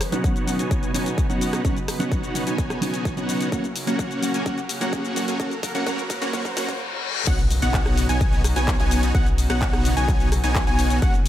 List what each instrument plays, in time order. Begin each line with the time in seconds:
Already playing: analog synth pad C#3 F#3 B3 D#4 B4, riser
0.01 cross-stick, open hi-hat, shaker
0.12 clean electric guitar F#3 B3 C#4 D#4, supersaw synth B3 D#4 F#4 C#5 F#5, closed hi-hat, shaker
0.24 kick, closed hi-hat, shaker
0.36 closed hi-hat, shaker
0.47 clean electric guitar F#3 B3 C#4 D#4, open hi-hat, shaker
0.59 supersaw synth B3 D#4 F#4 C#5 G#5, closed hi-hat, shaker
0.71 kick, closed hi-hat, shaker
0.83 closed hi-hat, shaker
0.94 clean electric guitar F#3 B3 C#4 D#4, supersaw synth B3 D#4 F#4 C#5 G#5, open hi-hat, shaker
1.06 closed hi-hat, shaker
1.18 kick, closed hi-hat, shaker
1.29 clean electric guitar F#3 B3 C#4 D#4, supersaw synth B3 D#4 F#4 C#5 F#5, closed hi-hat, shaker
1.41 open hi-hat, shaker
1.53 cross-stick, closed hi-hat, shaker
1.64 clean electric guitar F#3 B3 C#4 D#4, supersaw synth D#4 F#4 C#5 F#5, kick, closed hi-hat, shaker
1.77 closed hi-hat, shaker
1.88 cross-stick, open hi-hat, shaker
1.99 clean electric guitar F#3 B3 C#4 D#4, supersaw synth B3 D#4 F#4 C#5 F#5, closed hi-hat, shaker
2.12 kick, closed hi-hat, shaker
2.23 closed hi-hat, shaker
2.34 clean electric guitar F#3 B3 C#4 D#4, open hi-hat, shaker
2.47 supersaw synth B3 D#4 F#4 C#5 G#5, closed hi-hat, shaker
2.58 kick, closed hi-hat, shaker
2.70 cross-stick, closed hi-hat, shaker
2.81 clean electric guitar F#3 B3 C#4 D#4, supersaw synth B3 D#4 F#4 C#5 G#5, open hi-hat, shaker
2.94 closed hi-hat, shaker
3.05 kick, closed hi-hat, shaker
3.16 clean electric guitar F#3 B3 C#4 D#4, supersaw synth B3 D#4 F#4 C#5 F#5, closed hi-hat, shaker
3.29 open hi-hat, shaker
3.41 closed hi-hat, shaker
3.52 clean electric guitar F#3 A#3 C#4 F#4, analog synth pad F#3 A#3 F#4 A#4, supersaw synth A#3 C#4 F#4 C#5 F#5, kick, closed hi-hat, shaker
3.64 closed hi-hat, shaker
3.76 open hi-hat, shaker
3.87 clean electric guitar F#3 A#3 C#4 F#4, supersaw synth A#3 C#4 F#4 C#5 F#5, closed hi-hat, shaker
3.99 kick, closed hi-hat, shaker
4.11 closed hi-hat, shaker
4.22 clean electric guitar F#3 A#3 C#4 F#4, open hi-hat, shaker
4.34 supersaw synth A#3 C#4 F#4 C#5 G#5, closed hi-hat, shaker
4.45 clean electric guitar F#3 A#3 C#4 F#4, supersaw synth A#3 C#4 F#4 C#5 F#5, kick, closed hi-hat, shaker
4.58 closed hi-hat, shaker
4.69 open hi-hat, shaker
4.81 clean electric guitar F#3 A#3 C#4 F#4, supersaw synth A#3 C#4 F#4 C#5 F#5, closed hi-hat, shaker
4.93 kick, closed hi-hat, shaker
5.05 closed hi-hat, shaker
5.16 clean electric guitar F#3 A#3 C#4 F#4, open hi-hat, shaker
5.28 supersaw synth A#3 C#4 F#4 C#5 G#5, closed hi-hat, shaker
5.39 clean electric guitar F#3 A#3 C#4 F#4, supersaw synth A#3 C#4 F#4 C#5 F#5, kick, closed hi-hat, shaker
5.51 closed hi-hat, shaker
5.63 kick, open hi-hat, shaker
5.74 clean electric guitar F#3 A#3 C#4 F#4, supersaw synth A#3 C#4 F#4 C#5 F#5, closed hi-hat, shaker
5.86 clean electric guitar F#3 A#3 C#4 F#4, supersaw synth A#3 C#4 F#4 C#5 F#5, kick, closed hi-hat, shaker
5.98 closed hi-hat, shaker
6.10 kick, open hi-hat, shaker
6.21 clean electric guitar F#3 A#3 C#4 F#4, supersaw synth A#3 C#4 F#4 C#5 F#5, closed hi-hat, shaker
6.33 clean electric guitar F#3 A#3 C#4 F#4, supersaw synth A#3 C#4 F#4 C#5 F#5, kick, closed hi-hat, reverse cymbal, shaker
6.45 kick, closed hi-hat, shaker
6.56 clean electric guitar F#3 A#3 C#4 F#4, supersaw synth A#3 C#4 F#4 C#5 F#5, kick, open hi-hat, shaker
6.69 kick, closed hi-hat, shaker
7.27 sub bass B1, analog synth pad C#3 F#3 B3 D#4 F#4, supersaw synth B3 D#4 F#4 C#5 F#5, digital synth lead F#5, kick, closed hi-hat, crash, impact, shaker
7.39 closed hi-hat, shaker
7.51 open hi-hat, shaker
7.62 sub bass B1, supersaw synth B3 D#4 F#4 C#5 F#5, digital synth lead F#5, closed hi-hat, shaker
7.74 kick, clap, closed hi-hat, shaker
7.86 cross-stick, closed hi-hat, shaker
7.97 open hi-hat, shaker
8.09 sub bass B1, supersaw synth B3 D#4 F#4 C#5 G#5, digital synth lead G#5, closed hi-hat, shaker
8.21 kick, closed hi-hat, shaker
8.33 closed hi-hat, shaker
8.44 cross-stick, open hi-hat, shaker
8.56 sub bass B1, supersaw synth B3 D#4 F#4 C#5 G#5, digital synth lead G#5, closed hi-hat, shaker
8.68 kick, clap, closed hi-hat, shaker
8.80 sub bass B1, supersaw synth B3 D#4 F#4 C#5 G#5, digital synth lead G#5, clap, closed hi-hat, shaker
8.91 open hi-hat, shaker
9.03 closed hi-hat, shaker
9.15 sub bass B1, supersaw synth B3 D#4 F#4 C#5 F#5, digital synth lead F#5, kick, closed hi-hat, shaker
9.26 closed hi-hat, shaker
9.38 open hi-hat, shaker
9.50 sub bass B1, supersaw synth B3 D#4 F#4 C#5 F#5, digital synth lead F#5, cross-stick, closed hi-hat, shaker
9.62 kick, clap, closed hi-hat, shaker
9.73 cross-stick, closed hi-hat, shaker
9.85 open hi-hat, shaker
9.97 sub bass B1, supersaw synth B3 D#4 F#4 C#5 G#5, digital synth lead G#5, closed hi-hat, shaker
10.08 kick, clap, closed hi-hat, shaker
10.20 closed hi-hat, shaker
10.32 cross-stick, open hi-hat, shaker
10.44 sub bass B1, supersaw synth B3 D#4 F#4 C#5 G#5, digital synth lead G#5, closed hi-hat, shaker
10.55 kick, clap, closed hi-hat, shaker
10.67 sub bass B1, supersaw synth B3 D#4 F#4 C#5 G#5, digital synth lead G#5, closed hi-hat, shaker
10.79 open hi-hat, shaker
10.90 closed hi-hat, shaker
11.02 sub bass F#1, supersaw synth A#3 C#4 F#4 C#5 F#5, analog synth pad A#3 F#4 A#4, digital synth lead F#5, kick, closed hi-hat, shaker
11.14 closed hi-hat, shaker